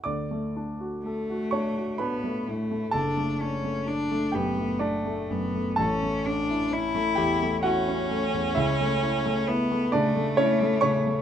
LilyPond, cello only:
\new Staff \with { instrumentName = "Cello" } { \time 3/4 \key d \major \tempo 4 = 65 r4 a4 b8 a8 | d'8 cis'8 d'8 b8 a8 b8 | cis'8 d'8 e'4 cis'4~ | cis'4 b8 a4. | }